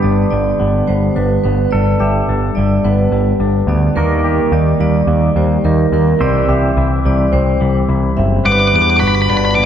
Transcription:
Already playing: G2 D3 G3 B3 G4 B4
0.02 G1 D4 D5
0.30 G1 G3 D5
0.59 G1 B3
0.87 G1 G3 C5
1.16 G1 D4 B4
1.44 G1 B3 B4
1.71 G1 G2 A4 D5
2.00 G1 G4 E5
2.29 G1 D4
2.55 G1 G3 D5
2.84 G1 B3 B4
3.11 G1 G3
3.40 G1 D4
3.67 D2 B3 D5
3.96 D#2 D#3 A#3 A#4
4.24 G4
4.52 D#2 D#4 D5
4.80 D#2 G3 D5
5.07 D#2 A#3
5.36 D#2 G3 C5
5.65 D#2 D#4 A#4
5.92 D#2 A#3 A#4
6.20 C2 C3 E3 C4 G4 C5 D5
6.49 C2 G4 E5
6.77 C2 E4
7.05 C2 G3 D5
7.32 C2 C4 C5
7.61 C2 G3
7.89 C2 E4
8.17 F#1 C4 E5
8.45 G1 G3 D4 B4 F#5 D6
8.52 D6
8.59 D6
8.68 D6
8.73 E2 B3 D6
8.82 D6
8.90 D6
8.97 F#4 B5 D6
9.02 G1 B4
9.07 B5
9.15 B5
9.22 B5
9.29 G1 D4 D5 B5
9.37 B5
9.45 B5
9.51 B5
9.55 G1 B3 D6

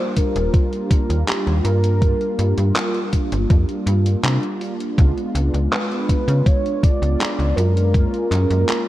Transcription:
Already playing: G3 A#3 D4 F4 C5
0.16 A#4, kick, closed hi-hat
0.36 D#1, closed hi-hat
0.54 kick, closed hi-hat
0.73 closed hi-hat
0.90 A#4, kick, closed hi-hat
1.10 D#2, closed hi-hat
1.28 G4, clap, closed hi-hat
1.47 D#2, closed hi-hat
1.64 G2 G3 A#3 D4 F4 A#4, closed hi-hat
1.84 closed hi-hat
2.00 G3 A#3 D4 F4, kick, closed hi-hat
2.21 closed hi-hat
2.39 G2, closed hi-hat
2.58 G2, closed hi-hat
2.76 clap, closed hi-hat
2.95 closed hi-hat
3.13 kick, closed hi-hat
3.32 G1, closed hi-hat
3.50 F2, kick, closed hi-hat
3.69 closed hi-hat
3.86 G2, closed hi-hat
4.06 closed hi-hat
4.24 C3, clap, closed hi-hat
4.43 closed hi-hat
4.61 G3 A#3 D4 F4, closed hi-hat
4.80 closed hi-hat
4.96 C#2 G#3 B3 D4 F4, kick, closed hi-hat
5.18 closed hi-hat
5.35 C#2, closed hi-hat
5.54 C#2, closed hi-hat
5.72 B4, clap, closed hi-hat
5.92 closed hi-hat
6.09 kick, closed hi-hat
6.28 C#3, closed hi-hat
6.46 C#5, kick, closed hi-hat
6.66 closed hi-hat
6.83 D5, kick, closed hi-hat
7.02 C#2, closed hi-hat
7.21 clap, closed hi-hat
7.39 C#2, closed hi-hat
7.56 F#2 G#3 B3 D4 F4 A#4, closed hi-hat
7.77 closed hi-hat
7.92 G#3 A#3 C#4 F4, kick, closed hi-hat
8.14 closed hi-hat
8.31 F#2, clap, closed hi-hat
8.50 F#2, closed hi-hat
8.69 clap, closed hi-hat

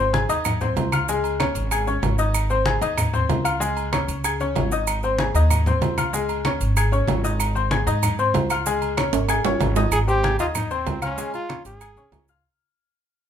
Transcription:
Already playing: G#1 C4 C5 C6
0.13 G#4 G#5 G#6, high conga, low timbale, low agogo, maracas
0.29 D#2 D#4 D#5 D#6, high conga, low agogo, maracas
0.45 high conga, low conga, low agogo, claves, maracas
0.61 C4 C5 C6, high conga, low conga, maracas
0.76 C#2, high conga, low timbale, low agogo, maracas
0.92 F4 F5 F6, high conga, low agogo, claves, maracas
1.09 G#3 G#4 G#5, high conga, maracas
1.24 high conga, low agogo, maracas
1.40 C#4 C#5 C#6, high conga, low timbale, low agogo, claves, maracas
1.55 G#1, high conga, low agogo, maracas
1.71 G#4 G#5 G#6, high conga, low agogo, claves, maracas
1.87 C#4 C#5 C#6, high conga, maracas
2.02 G#1, high conga, low timbale, low agogo, maracas
2.19 D#4 D#5 D#6, high conga, maracas
2.34 high conga, low agogo, claves, maracas
2.50 C4 C5 C6, high conga, maracas
2.66 G#4 G#5 G#6, high conga, low timbale, low agogo, maracas
2.81 D#2 D#4 D#5 D#6, high conga, low agogo, maracas
2.98 high conga, low conga, low agogo, claves, maracas
3.13 C4 C5 C6, high conga, low conga, maracas
3.29 C#2, high conga, low timbale, low agogo, maracas
3.44 F4 F5 F6, low agogo, claves, maracas
3.60 G#3 G#4 G#5, high conga, maracas
3.77 high conga, low agogo, maracas
3.92 C#4 C#5 C#6, high conga, low timbale, low agogo, claves, maracas
4.08 C#2, high conga, low agogo, maracas
4.24 G#4 G#5 G#6, high conga, low agogo, claves, maracas
4.40 C#4 C#5 C#6, high conga, maracas
4.56 G#1, high conga, low timbale, low agogo, maracas
4.71 D#4 D#5 D#6, high conga, maracas
4.87 high conga, low agogo, claves, maracas
5.03 C4 C5 C6, high conga, maracas
5.18 G#4 G#5 G#6, high conga, low timbale, low agogo, maracas
5.34 D#2 D#4 D#5 D#6, high conga, low agogo, maracas
5.50 high conga, low conga, low agogo, claves, maracas
5.66 C4 C5 C6, high conga, low conga, maracas
5.81 C#2, high conga, low timbale, low agogo, maracas
5.98 F4 F5 F6, high conga, low agogo, claves, maracas
6.13 G#3 G#4 G#5, high conga, maracas
6.29 high conga, low agogo, maracas
6.45 C#4 C#5 C#6, high conga, low timbale, low agogo, claves, maracas
6.61 G#1, high conga, low agogo, maracas
6.76 G#4 G#5 G#6, high conga, low agogo, claves, maracas
6.92 C#4 C#5 C#6, high conga, maracas
7.08 G#1, high conga, low timbale, low agogo, maracas
7.24 D#4 D#5 D#6, high conga, maracas
7.40 high conga, low agogo, claves, maracas
7.55 C4 C5 C6, high conga, maracas
7.71 G#4 G#5 G#6, high conga, low timbale, low agogo, maracas
7.87 G#2 D#4 D#5 D#6, high conga, low agogo, maracas
8.03 high conga, low conga, low agogo, claves, maracas
8.18 C4 C5 C6, high conga, maracas
8.34 C#2, high conga, low timbale, low agogo, maracas
8.50 F4 F5 F6, low agogo, claves, maracas
8.66 G#3 G#4 G#5, high conga, maracas
8.82 high conga, low agogo, maracas
8.97 C#4 C#5 C#6, high conga, low timbale, low agogo, claves, maracas
9.13 G#1, high timbale, low agogo, maracas
9.29 G#4 G#5 G#6, high conga, high timbale, low agogo, claves, maracas
9.44 G1 C#4 C#5 C#6, high conga, low timbale, maracas
9.60 G#1, high conga, low timbale, low agogo, maracas
9.76 D#4 D#5 D#6, high conga, low timbale, maracas
9.91 G#1 G#4, high conga, low agogo, claves, maracas
10.08 C4 G4 C5 C6, high conga, maracas
10.23 G#4 G#5 G#6, high conga, low timbale, low agogo, maracas
10.39 D#2 D#4 F4 D#5 D#6, high conga, low agogo, maracas
10.55 D#4, high conga, low conga, low agogo, claves, maracas
10.71 C4 C5 C6, high conga, maracas
10.86 C#2, high conga, low timbale, low agogo, maracas
11.02 C#4 F4 F5 F6, high conga, low agogo, claves, maracas
11.18 G#3 G#4 G#5, high conga, maracas
11.34 F4, high conga, low agogo, maracas
11.49 C#4 C#5 C#6, high conga, low timbale, low agogo, claves, maracas
11.65 G#1 G#4, high conga, low agogo, maracas
11.81 G#4 G#5 G#6, high conga, low agogo, claves, maracas
11.96 C2 C#4 C#5 C#6, high conga, maracas
12.12 C#2, high conga, low timbale, low agogo, maracas
12.28 F4 F5 F6, maracas

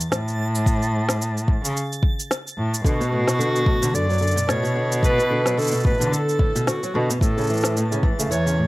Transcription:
Already playing: A6
0.01 cabasa
0.12 A2, snare, cabasa
0.28 cabasa
0.55 cabasa
0.66 kick, cabasa
0.82 cabasa
1.09 snare, cabasa
1.22 cabasa
1.37 cabasa
1.48 kick
1.64 C#3, cabasa
1.77 cabasa
1.93 cabasa
2.03 kick
2.20 cabasa
2.31 snare, cabasa
2.47 cabasa
2.58 A2
2.74 cabasa
2.85 B2 D3 F#4, kick, cabasa
3.00 B2, cabasa
3.13 A2
3.27 B2, snare, cabasa
3.39 D3, cabasa
3.56 cabasa
3.66 A2, kick
3.82 B2 D3, cabasa
3.94 F#2 D3 D5, cabasa
4.09 F#3, cabasa
4.13 cabasa
4.18 D3, cabasa
4.22 cabasa
4.27 cabasa
4.31 cabasa
4.36 B2, cabasa
4.48 A2 B2 C#5, snare, cabasa
4.63 B2, cabasa
4.75 D3
4.92 cabasa
5.03 A2 B4, kick, cabasa
5.18 B2, cabasa
5.31 D3
5.46 F#3, snare, cabasa
5.57 D3 A4, cabasa
5.62 cabasa
5.64 cabasa
5.67 cabasa
5.71 B2, cabasa
5.74 cabasa
5.80 cabasa
5.85 A2 B4, kick
5.90 cabasa
5.94 cabasa
5.98 B2 D3, cabasa
6.01 cabasa
6.12 D3 A4, cabasa
6.29 cabasa
6.39 A2, kick
6.55 B2, cabasa
6.67 D3 F#4, snare, cabasa
6.83 F#3, cabasa
6.94 B2 D3
7.10 B2, cabasa
7.21 A2 A4, kick, cabasa
7.38 C#3, cabasa
7.41 cabasa
7.44 cabasa
7.47 cabasa
7.49 E3, cabasa
7.54 cabasa
7.57 cabasa
7.61 snare, cabasa
7.65 cabasa
7.77 A2, cabasa
7.92 C#3, cabasa
8.03 E3, kick
8.18 C#3 A3, cabasa
8.30 E2 E3 C#5, cabasa
8.46 C#3, cabasa
8.58 A2

